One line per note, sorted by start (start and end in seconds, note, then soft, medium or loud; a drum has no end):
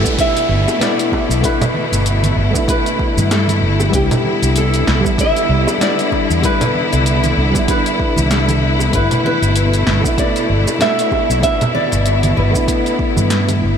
0.00 3.89 B2 medium
0.00 3.90 A3 medium
0.00 0.76 A3 medium
0.00 0.77 B3 medium
0.00 13.78 E4 medium
0.00 0.15 A4 medium
0.00 downlifter medium
0.05 0.78 D4 medium
0.05 0.79 E4 medium
0.05 kick loud
0.05 shaker medium
0.18 0.82 E5 loud
0.18 kick loud
0.18 closed hi-hat medium
0.18 shaker medium
0.37 closed hi-hat soft
0.37 shaker soft
0.49 0.64 G1 loud
0.68 high bongo medium
0.68 shaker medium
0.79 1.39 A3 medium
0.79 1.40 B3 medium
0.79 1.40 D4 medium
0.79 1.41 E4 medium
0.79 1.40 D5 medium
0.79 snare medium
0.79 closed hi-hat medium
0.79 shaker medium
0.99 closed hi-hat soft
0.99 shaker soft
1.12 kick medium
1.12 high bongo medium
1.29 1.41 B1 medium
1.29 shaker medium
1.41 1.60 A3 medium
1.41 1.60 B3 medium
1.41 1.61 D4 medium
1.41 1.62 E4 loud
1.41 kick loud
1.41 closed hi-hat medium
1.41 shaker medium
1.45 2.34 B4 medium
1.61 closed hi-hat soft
1.61 low conga loud
1.61 shaker soft
1.74 high conga medium
1.92 2.33 G1 medium
1.92 closed hi-hat soft
1.92 shaker medium
2.06 closed hi-hat medium
2.06 shaker medium
2.24 closed hi-hat soft
2.24 high conga medium
2.24 shaker soft
2.36 2.51 G1 medium
2.50 3.88 A3 medium
2.50 3.89 B3 medium
2.55 3.90 D4 medium
2.55 3.92 E4 loud
2.55 kick loud
2.55 shaker medium
2.68 3.27 B4 medium
2.68 kick loud
2.68 closed hi-hat medium
2.68 shaker medium
2.86 closed hi-hat soft
2.86 shaker soft
2.99 kick loud
3.17 3.63 G2 loud
3.17 high conga medium
3.17 shaker medium
3.31 3.77 A4 medium
3.31 snare medium
3.31 closed hi-hat medium
3.31 shaker medium
3.47 closed hi-hat soft
3.47 high bongo soft
3.47 high conga medium
3.47 shaker soft
3.61 3.89 G1 medium
3.80 high bongo medium
3.80 shaker medium
3.89 4.08 C2 medium
3.89 8.89 D3 medium
3.89 4.98 G3 medium
3.89 5.00 B3 medium
3.89 kick loud
3.93 8.90 B3 medium
3.93 5.01 D4 medium
3.93 5.02 E4 medium
3.93 4.57 G4 medium
3.93 closed hi-hat medium
3.93 shaker medium
4.11 closed hi-hat soft
4.11 low conga medium
4.11 shaker soft
4.24 high conga medium
4.42 4.83 C2 medium
4.42 closed hi-hat soft
4.42 shaker medium
4.56 5.21 A4 loud
4.56 closed hi-hat medium
4.56 shaker medium
4.74 closed hi-hat soft
4.74 shaker soft
4.87 5.02 C2 medium
4.87 snare medium
5.01 5.75 G3 medium
5.01 5.77 B3 medium
5.05 5.78 D4 medium
5.05 5.79 E4 loud
5.05 kick loud
5.05 shaker medium
5.18 5.78 E5 loud
5.18 kick loud
5.18 closed hi-hat medium
5.18 shaker medium
5.36 closed hi-hat soft
5.36 shaker soft
5.49 5.64 C2 loud
5.67 high bongo medium
5.67 shaker medium
5.78 6.39 G3 medium
5.78 6.40 B3 medium
5.78 6.40 D4 medium
5.78 6.41 E4 medium
5.78 snare medium
5.78 closed hi-hat medium
5.78 shaker medium
5.83 6.40 D5 medium
5.99 closed hi-hat soft
5.99 shaker soft
6.12 kick medium
6.12 high bongo medium
6.30 6.41 E2 medium
6.30 shaker medium
6.42 6.60 G3 medium
6.42 6.61 B3 medium
6.42 6.61 D4 medium
6.42 6.62 E4 loud
6.42 7.34 B4 medium
6.42 kick loud
6.42 closed hi-hat medium
6.42 shaker medium
6.61 closed hi-hat soft
6.61 low conga medium
6.61 shaker soft
6.75 high conga medium
6.93 7.34 C2 medium
6.93 closed hi-hat soft
6.93 shaker medium
7.06 closed hi-hat medium
7.06 shaker medium
7.24 closed hi-hat soft
7.24 high conga medium
7.24 shaker soft
7.37 7.52 C2 medium
7.51 8.88 G3 medium
7.51 8.89 B3 medium
7.51 kick loud
7.51 closed hi-hat soft
7.55 8.89 D4 medium
7.55 8.92 E4 loud
7.55 shaker medium
7.68 8.28 B4 medium
7.68 kick loud
7.68 closed hi-hat medium
7.68 shaker medium
7.86 closed hi-hat soft
7.86 shaker soft
7.99 kick loud
8.16 8.90 C2 medium
8.16 high conga medium
8.16 shaker medium
8.31 8.77 A4 medium
8.31 snare medium
8.31 closed hi-hat medium
8.31 shaker medium
8.48 closed hi-hat soft
8.48 high bongo soft
8.48 high conga medium
8.48 shaker soft
8.79 high bongo soft
8.79 shaker medium
8.89 9.08 G1 loud
8.89 9.98 A3 medium
8.89 10.00 B3 medium
8.93 13.78 B2 medium
8.93 11.41 A3 medium
8.93 10.01 D4 medium
8.93 10.02 E4 medium
8.93 9.25 B4 loud
8.93 kick loud
8.93 closed hi-hat medium
8.93 shaker medium
9.11 closed hi-hat soft
9.11 low conga medium
9.11 shaker soft
9.24 10.15 B4 loud
9.24 high conga medium
9.42 9.83 G1 medium
9.42 closed hi-hat soft
9.42 shaker medium
9.56 closed hi-hat medium
9.56 shaker medium
9.73 closed hi-hat soft
9.73 shaker soft
9.87 10.02 G1 loud
9.87 snare medium
10.01 10.75 A3 medium
10.01 10.77 B3 medium
10.01 kick loud
10.05 10.78 D4 medium
10.05 10.79 E4 medium
10.05 shaker medium
10.18 10.77 D5 loud
10.18 kick loud
10.18 closed hi-hat medium
10.18 shaker medium
10.36 closed hi-hat soft
10.36 shaker soft
10.49 10.64 G1 loud
10.68 high bongo medium
10.68 shaker medium
10.79 11.39 A3 medium
10.79 11.40 B3 medium
10.79 11.40 D4 medium
10.79 11.41 E4 medium
10.79 11.42 E5 loud
10.79 snare medium
10.79 closed hi-hat medium
10.79 shaker medium
10.99 closed hi-hat soft
10.99 shaker soft
11.12 kick medium
11.12 high bongo medium
11.29 11.41 B1 medium
11.29 shaker medium
11.40 11.59 A3 medium
11.40 11.60 B3 medium
11.40 13.78 B3 medium
11.40 11.61 D4 medium
11.40 11.61 E4 loud
11.40 11.72 E5 loud
11.40 kick loud
11.40 closed hi-hat medium
11.40 shaker medium
11.61 closed hi-hat soft
11.61 low conga medium
11.61 shaker soft
11.75 12.33 D5 loud
11.75 high conga medium
11.92 12.34 G1 medium
11.92 closed hi-hat soft
11.92 shaker medium
12.06 closed hi-hat medium
12.06 shaker medium
12.23 closed hi-hat soft
12.23 high conga medium
12.23 shaker soft
12.37 12.52 G1 medium
12.37 13.58 B4 medium
12.51 13.78 A3 medium
12.51 13.78 B3 medium
12.51 kick loud
12.55 13.78 D4 medium
12.55 13.78 E4 medium
12.55 shaker medium
12.68 kick loud
12.68 closed hi-hat medium
12.68 shaker medium
12.86 closed hi-hat soft
12.86 shaker soft
12.99 kick loud
13.17 13.64 G2 medium
13.17 high conga medium
13.17 shaker medium
13.30 snare medium
13.30 closed hi-hat medium
13.30 shaker medium
13.48 closed hi-hat soft
13.48 high bongo soft
13.48 high conga medium
13.48 shaker soft
13.62 13.78 G1 medium